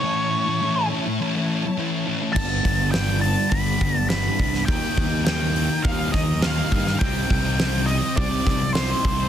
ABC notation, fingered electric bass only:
X:1
M:4/4
L:1/16
Q:1/4=103
K:Am
V:1 name="Fingered electric bass" clef=bass
z16 | G,,,2 G,,,6 G,,,2 G,,,4 C,,2 | _E,, z E,,6 E,,2 E,,4 G,,2 | C,,2 C,,6 C,,2 C,,4 C,,2 |]